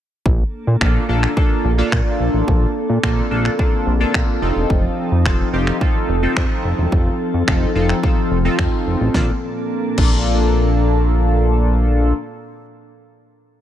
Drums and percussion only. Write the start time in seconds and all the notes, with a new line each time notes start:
0.26 kick
0.81 finger snap, kick
1.23 finger snap
1.37 kick
1.92 finger snap, kick
2.48 kick
3.03 finger snap, kick
3.45 finger snap
3.59 kick
4.14 finger snap, kick
4.70 kick
5.26 finger snap, kick
5.67 finger snap
5.81 kick
6.37 finger snap, kick
6.92 kick
7.48 finger snap, kick
7.89 finger snap
8.03 kick
8.59 finger snap, kick
9.14 kick, snare
9.98 kick, crash